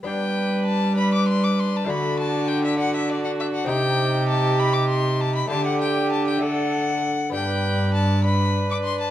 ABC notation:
X:1
M:6/8
L:1/16
Q:3/8=66
K:G
V:1 name="Violin"
g4 a2 b d' c' d' c' a | b2 a2 g e f e d f e f | g4 a2 b d' c'2 a b | a f g2 a g f6 |
g4 a2 b3 d' c' a |]
V:2 name="Viola"
B6 B6 | F6 F6 | G12 | G6 A4 z2 |
B6 B6 |]
V:3 name="Bassoon"
D6 D6 | D6 D6 | _E12 | D6 D4 z2 |
D6 D6 |]
V:4 name="Lute"
[B,DG]12 | [A,DF]12 | [C_EG]12 | [A,DG]6 [A,DA]6 |
[B,DG]12 |]
V:5 name="Lute" clef=bass
G,12 | D,12 | C,12 | D,8- D,2 z2 |
G,,12 |]
V:6 name="Cello" clef=bass
G,12 | D,12 | C,12 | D,8- D,2 z2 |
G,,12 |]